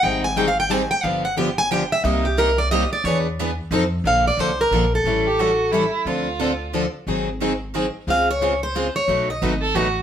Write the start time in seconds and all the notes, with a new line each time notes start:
0.03 G#1 D#3 G3 C4 D#4 G#4 G5
0.24 G#5
0.37 D#3 G3 C4 D#4 G#4 G5
0.48 F5
0.60 G5
0.70 D#3 G3 C4 D#4 G#4 G#5
0.91 G5
1.03 G1 D3 F3 B3 D4 G4 F5
1.25 F#5
1.38 D3 F3 B3 D4 G4 G5
1.58 G#5
1.71 D3 F3 B3 D4 G4 G5
1.92 E5
2.04 C2 C3 G3 A#3 D#4 G4 D#5
2.25 G4
2.37 C3 G3 A#3 D#4 G4 A#4
2.58 D5
2.71 C3 G3 A#3 D#4 G4 D#5
2.93 D5
3.04 E2 E3 B3 D4 G#4 B4 C#5
3.40 E3 B3 D4 G#4 B4
3.71 F2 F3 C4 D#4 A4
4.04 A#1 D3 F3 A#3 D4 A4 F5
4.28 D5
4.37 C2 D3 F3 A#3 D4 A4 C5
4.61 A#4
4.71 A#1 D3 F3 A#3 D4 A4
4.95 A4
5.04 A1 E3 G3 C#4 E4 A4
5.26 G4
5.39 E3 G3 C#4 E4 F#4 A4
5.72 E3 G3 C#4 E4 A4
6.05 D2 D3 F3 C4 D4 F4 A4
6.39 D3 F3 C4 D4 A4
6.73 D3 F3 C4 D4 A4
7.07 G#1 D#3 F#3 C4 D#4 G#4
7.40 D#3 F#3 C4 D#4 G#4
7.74 D#3 F#3 C4 D#4 G#4
8.07 C#2 C#3 G#3 C4 F4 G#4 F5
8.31 C#5
8.42 C#3 G#3 C4 F4 G#4
8.63 C5
8.75 C#3 G#3 C4 F4 G#4
8.96 C#5
9.08 B1 B2 F#3 A3 D#4 F#4 B4
9.30 D#5
9.42 G#1 B2 F#3 A3 D#4 F#4 B4
9.61 A4
9.75 A1 B2 F#3 A3 D#4 F#4 B4